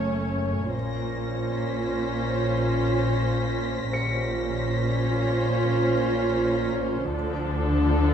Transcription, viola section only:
0.00 0.69 A3 soft
0.00 0.70 C#4 soft
0.74 3.90 C#4 soft
0.74 3.90 F4 soft
3.93 7.09 C#4 soft
3.93 7.09 F4 soft
7.13 8.14 F3 soft
7.13 8.14 D4 soft

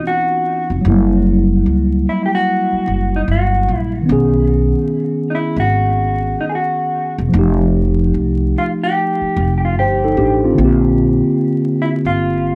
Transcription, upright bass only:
0.70 0.84 F1 medium
0.85 1.62 F#1 loud
1.66 2.04 C#2 medium
2.73 muted upright bass stroke soft
2.88 3.26 F#1 medium
3.28 3.66 G1 medium
3.68 4.07 A#1 medium
4.09 4.72 B1 medium
5.56 6.33 G#1 medium
7.18 7.33 E1 medium
7.34 8.11 F1 loud
8.14 8.53 C2 medium
9.22 muted upright bass stroke soft
9.37 9.77 F1 medium
9.77 10.15 G1 medium
10.17 10.55 A1 medium
10.58 11.21 A#1 medium
12.05 12.55 G1 medium

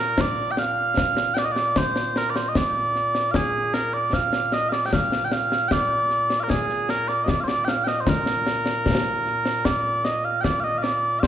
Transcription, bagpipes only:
0.00 11.27 A#2 medium
0.00 0.21 A#4 medium
0.21 0.51 D5 loud
0.51 0.59 G5 medium
0.59 1.34 F5 loud
1.34 1.45 D5 loud
1.34 1.38 G5 loud
1.45 1.51 D#5 medium
1.51 1.78 D5 loud
1.78 2.17 C5 loud
2.17 2.30 A#4 medium
2.30 2.36 D5 medium
2.36 2.49 C5 medium
2.49 2.56 D#5 medium
2.56 3.31 D5 loud
3.31 3.35 F5 medium
3.35 3.74 G#4 medium
3.74 3.94 A#4 medium
3.94 4.14 D5 medium
4.14 4.53 F5 loud
4.53 4.69 D#5 loud
4.69 4.86 D5 medium
4.69 4.73 F5 medium
4.86 4.93 G5 medium
4.93 5.25 F5 loud
5.25 5.32 G5 medium
5.32 5.68 F5 loud
5.68 6.40 D5 loud
5.68 5.72 G5 loud
6.40 6.50 A#4 medium
6.40 6.43 F5 medium
6.50 6.90 G#4 medium
6.90 7.08 A#4 medium
7.08 7.24 D5 medium
7.24 7.29 D#5 medium
7.29 7.40 D5 medium
7.40 7.48 C5 medium
7.40 7.44 F5 medium
7.48 7.65 D5 loud
7.65 7.69 G5 medium
7.69 7.84 F5 medium
7.84 8.01 D#5 medium
7.84 7.88 G5 medium
8.01 8.09 C5 soft
8.09 9.65 A#4 medium
9.65 10.04 D5 medium
10.04 10.25 D#5 medium
10.25 10.41 F5 medium
10.41 10.60 D5 medium
10.41 10.44 G5 medium
10.60 10.78 D#5 medium
10.60 10.64 F5 medium
10.78 10.82 F5 medium
10.82 11.19 D5 medium
11.19 11.27 C5 medium
11.19 11.23 F5 medium

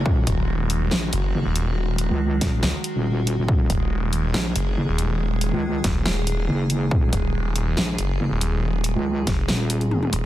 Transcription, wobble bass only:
0.06 0.25 D#1 loud
0.91 1.11 A#1 loud
1.34 1.44 F#1 loud
2.10 2.40 C#2 loud
2.41 2.61 D#1 loud
2.95 3.36 D#1 loud
3.38 3.47 D#1 loud
3.48 3.68 D#1 loud
4.34 4.54 A#1 loud
4.77 4.86 F#1 loud
5.53 5.83 C#2 loud
6.48 6.90 F#1 loud
6.91 7.11 D#1 loud
7.77 7.97 A#1 loud
8.20 8.29 F#1 loud
8.95 9.25 C#2 medium
9.48 10.11 D#1 loud

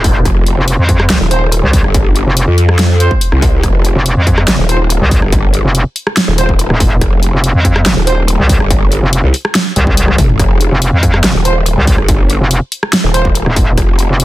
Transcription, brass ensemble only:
1.31 1.42 C4 medium
1.31 1.42 F4 medium
1.31 1.42 C5 loud
3.00 3.11 C4 medium
3.00 3.11 F4 medium
3.00 3.11 C5 loud
4.69 4.80 C4 medium
4.69 4.80 F4 medium
4.69 4.80 C5 loud
6.38 6.49 C4 medium
6.38 6.49 F4 medium
6.38 6.49 C5 loud
8.07 8.18 C4 medium
8.07 8.18 F4 medium
8.07 8.18 C5 loud
11.45 11.56 C4 medium
11.45 11.56 F4 medium
11.45 11.56 C5 loud
13.14 13.25 C4 medium
13.14 13.25 F4 medium
13.14 13.25 C5 loud

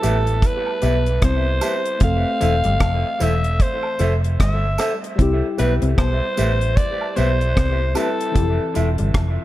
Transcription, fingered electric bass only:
0.04 0.40 A1 medium
0.83 1.19 B1 medium
1.23 1.59 C2 medium
2.02 2.23 F1 loud
2.42 2.63 E1 medium
2.66 2.80 G1 medium
2.81 3.03 F1 medium
3.21 3.57 E1 medium
4.00 4.36 F1 loud
4.41 4.76 G1 medium
5.20 5.41 C2 loud
5.60 5.81 B1 medium
5.83 5.97 C2 medium
5.98 6.20 B1 medium
6.39 6.74 A1 medium
7.18 7.54 B1 medium
7.58 7.93 C2 medium
8.36 8.58 F1 loud
8.77 8.97 E1 medium
9.00 9.14 G1 medium
9.15 9.36 F1 medium

